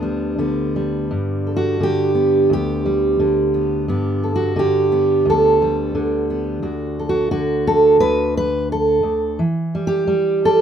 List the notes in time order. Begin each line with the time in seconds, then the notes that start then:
Already playing: D2 D3 B3 D4
0.03 G3
0.38 D3 B3
0.76 G3
1.11 G2
1.47 A4
1.57 F#4
1.80 D3 G4
2.15 B3
2.50 D2 G4
2.86 G3
3.19 D3
3.54 B3
3.88 G2 B3
4.24 A4
4.36 F#4
4.56 D3 G4
4.92 B3
5.25 D2
5.30 A4
5.62 G3
5.95 D3
6.30 B3
6.62 D2 F#4
6.99 A4
7.09 F#4
7.31 D3 F#4
7.67 A4
8.00 D2 B4
8.37 B4
8.72 A4
9.03 D2
9.39 E3
9.75 G3
9.87 G4
10.07 G3
10.45 A4